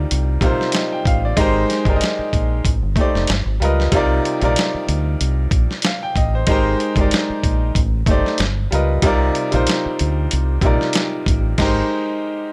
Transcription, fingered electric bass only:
0.12 0.37 C2 loud
0.42 0.56 A#1 medium
1.06 1.32 A1 medium
1.37 1.63 G#1 loud
1.86 1.98 G1 medium
2.19 muted fingered electric bass stroke soft
2.34 2.60 A#1 medium
2.65 2.79 A1 loud
2.82 2.94 G1 medium
3.15 3.27 F1 medium
3.29 3.43 G1 loud
3.45 3.58 G#1 medium
3.61 3.87 C#2 medium
3.93 4.19 C2 loud
4.42 4.54 A#1 medium
4.74 muted fingered electric bass stroke soft
4.89 5.15 D2 medium
5.21 5.47 C2 medium
5.52 5.66 A#1 medium
6.16 6.42 A1 medium
6.48 6.74 G#1 loud
6.96 7.09 G1 medium
7.30 muted fingered electric bass stroke medium
7.44 7.70 A#1 medium
7.76 8.02 A1 loud
8.07 8.21 G1 medium
8.40 8.66 G1 loud
8.72 8.98 C#2 medium
9.03 9.29 C2 medium
9.54 9.65 A#1 medium
9.86 muted fingered electric bass stroke medium
10.01 10.26 D2 medium
10.33 10.58 C2 medium
10.62 10.76 A#1 medium
11.27 11.53 A1 medium
11.59 11.81 G#1 loud

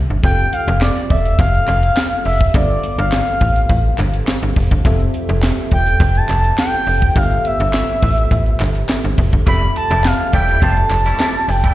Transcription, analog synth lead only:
0.24 0.54 G5 loud
0.53 0.81 F5 loud
0.82 1.12 D5 medium
1.10 1.39 E5 loud
1.39 2.22 F5 loud
2.25 2.56 E5 loud
2.54 2.98 D5 loud
2.99 4.10 F5 loud
5.73 6.19 G5 loud
6.17 6.59 A5 loud
6.59 7.18 G5 loud
7.17 7.47 F5 loud
7.46 9.18 E5 loud
9.48 9.74 B5 loud
9.77 10.07 A5 loud
10.06 10.34 F5 loud
10.34 10.61 G5 loud
10.63 11.51 A5 loud
11.49 11.74 G5 loud

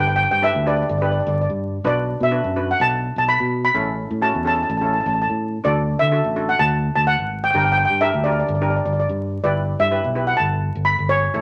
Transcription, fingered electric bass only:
0.00 0.23 G1 loud
0.31 0.50 G2 medium
0.55 0.83 D2 medium
0.89 1.18 G1 loud
1.27 1.45 G1 loud
1.50 1.77 G2 medium
1.84 2.13 B1 loud
2.20 2.39 B2 medium
2.44 2.72 F#2 medium
2.80 3.08 B1 loud
3.16 3.35 B1 medium
3.40 3.68 B2 medium
3.75 4.03 A1 loud
4.11 4.29 A2 medium
4.35 4.62 E2 medium
4.70 4.98 A1 loud
5.06 5.25 A1 loud
5.30 5.57 A2 medium
5.65 5.94 D2 loud
6.01 6.20 D3 medium
6.24 6.52 A1 medium
6.60 6.88 D2 loud
6.96 7.15 D2 medium
7.19 7.47 G#1 medium
7.54 7.83 G1 loud
7.90 8.09 G2 medium
8.14 8.42 D2 medium
8.49 8.78 G1 loud
8.86 9.04 G1 medium
9.09 9.37 G2 medium
9.44 9.73 G1 loud
9.79 9.99 G2 medium
10.04 10.32 B1 medium
10.40 10.68 G1 loud
10.75 10.94 G1 loud
10.99 11.27 G1 medium
11.34 11.41 A1 loud

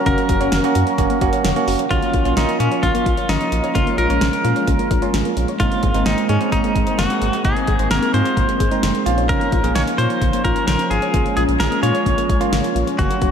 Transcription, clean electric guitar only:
0.06 1.41 A#4 loud
1.91 2.34 F4 medium
2.37 2.60 D#4 medium
2.60 2.84 C#4 medium
2.83 3.31 F4 medium
3.29 3.77 D#4 medium
3.75 3.98 F4 loud
3.98 5.33 A#4 loud
5.60 6.03 F4 medium
6.06 6.28 D#4 medium
6.29 6.51 C#4 medium
6.52 7.00 D#4 medium
6.99 7.42 F#4 medium
7.45 7.88 G#4 loud
7.91 8.14 A#4 loud
8.14 9.02 C5 medium
9.29 9.75 A#4 loud
9.75 9.82 C#5 loud
9.98 10.44 C5 loud
10.44 10.66 A#4 medium
10.67 10.91 A#4 medium
10.90 11.35 G#4 medium
11.37 11.43 G#4 medium
11.60 11.82 A#4 medium
11.83 12.48 C#5 medium
12.99 13.31 F#4 medium

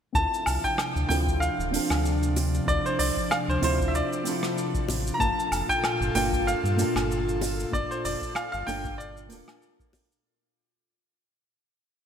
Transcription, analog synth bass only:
0.15 0.27 D2 loud
0.47 0.59 C2 medium
0.96 1.05 D2 medium
1.09 1.50 D2 loud
1.59 1.79 D1 medium
1.90 2.60 D2 loud
2.68 2.80 D2 medium
2.99 3.11 C2 medium
3.48 3.58 D2 medium
3.62 4.03 D2 loud
4.89 5.11 A1 medium
5.20 5.32 G1 medium
5.51 5.64 F1 medium
6.00 6.10 G1 medium
6.15 6.55 G1 loud
6.64 6.84 G2 loud
6.95 7.66 G1 loud
7.73 7.85 G1 medium
8.05 8.17 F1 medium
8.54 8.63 G1 medium
8.68 9.32 G1 loud
9.30 9.43 D1 medium

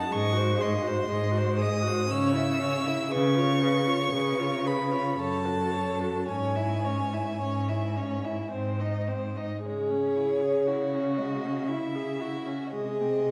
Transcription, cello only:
0.11 0.97 G#2 loud
1.08 1.97 G#2 medium
2.11 2.99 C#3 medium
3.12 4.01 C#3 loud
4.13 5.04 C#3 medium
5.17 6.14 F#2 medium
6.29 7.29 G#2 medium
7.42 8.39 G#2 medium
8.52 9.51 G#2 medium
9.64 12.75 C#3 medium
12.73 13.31 C3 medium

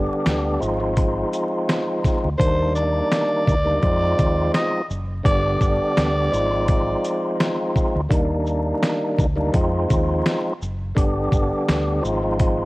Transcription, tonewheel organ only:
0.00 0.60 D3 loud
0.00 0.60 G3 medium
0.00 0.61 B3 medium
0.00 0.61 D4 medium
0.00 0.61 G4 loud
0.59 0.79 F3 medium
0.59 0.79 G#3 medium
0.59 0.80 C4 medium
0.59 0.80 D#4 medium
0.59 0.80 F4 loud
0.80 0.95 F3 medium
0.80 0.95 G#3 medium
0.80 0.96 C4 medium
0.80 0.96 D#4 medium
0.80 0.97 F4 loud
0.96 2.29 F3 medium
0.96 2.29 G#3 medium
0.96 2.29 C4 medium
0.96 2.30 D#4 medium
0.96 2.30 F4 loud
2.38 3.55 D#3 medium
2.38 3.55 G3 medium
2.38 3.55 A#3 medium
2.38 3.55 D4 medium
2.38 3.55 D#4 loud
3.64 3.84 D#3 loud
3.64 3.84 G3 medium
3.64 3.84 A#3 medium
3.64 3.84 D4 medium
3.64 3.82 D#4 loud
3.81 4.81 F3 medium
3.81 4.82 G#3 medium
3.81 4.82 C4 medium
3.81 4.82 D#4 medium
3.81 4.82 F4 loud
5.23 6.32 D3 medium
5.23 6.32 G3 medium
5.23 6.32 B3 medium
5.23 6.32 D4 medium
5.23 6.32 G4 loud
6.31 6.50 F3 loud
6.31 6.51 G#3 medium
6.31 6.51 C4 medium
6.31 6.51 D#4 medium
6.31 6.52 F4 loud
6.51 6.67 F3 medium
6.51 6.67 G#3 medium
6.51 6.67 C4 medium
6.51 6.68 D#4 medium
6.51 6.68 F4 loud
6.68 8.01 F3 medium
6.68 8.01 G#3 medium
6.68 8.01 C4 medium
6.68 8.01 D#4 medium
6.68 8.01 F4 loud
8.09 9.26 D#3 loud
8.09 9.26 G3 medium
8.09 9.26 A#3 medium
8.09 9.26 D4 medium
8.09 9.27 D#4 loud
9.36 9.55 D#3 loud
9.36 9.55 G3 medium
9.36 9.56 A#3 medium
9.36 9.56 D4 medium
9.36 9.53 D#4 loud
9.53 10.53 F3 medium
9.53 10.53 G#3 medium
9.53 10.53 C4 medium
9.53 10.53 D#4 medium
9.53 10.54 F4 loud
10.95 12.03 D3 loud
10.95 12.03 G3 medium
10.95 12.03 B3 medium
10.95 12.04 D4 medium
10.95 12.04 G4 loud
12.02 12.21 F3 loud
12.02 12.22 G#3 medium
12.02 12.22 C4 medium
12.02 12.23 D#4 medium
12.02 12.23 F4 loud
12.23 12.38 F3 medium
12.23 12.38 G#3 medium
12.23 12.39 C4 medium
12.23 12.39 D#4 medium
12.23 12.39 F4 loud
12.39 12.65 F3 medium
12.39 12.65 G#3 medium
12.39 12.65 C4 medium
12.39 12.65 D#4 medium
12.39 12.65 F4 loud

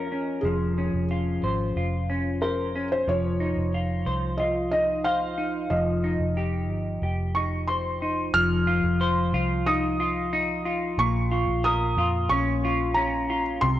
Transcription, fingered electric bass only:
0.00 0.40 F2 medium
0.43 0.90 F1 medium
0.93 1.40 F1 medium
1.43 1.74 G#1 medium
1.76 3.04 F1 medium
3.07 3.54 F1 medium
3.57 4.04 F1 medium
4.06 5.67 C2 medium
5.70 6.18 F1 medium
6.19 6.69 F1 medium
6.69 7.00 G1 medium
7.02 8.30 F1 medium
8.34 8.81 F1 loud
8.84 9.31 F1 medium
9.33 10.94 C2 medium
10.98 11.45 A#1 loud
11.47 11.95 A#1 loud
11.96 12.28 F2 medium
12.29 13.58 A#1 loud
13.62 13.80 C2 loud

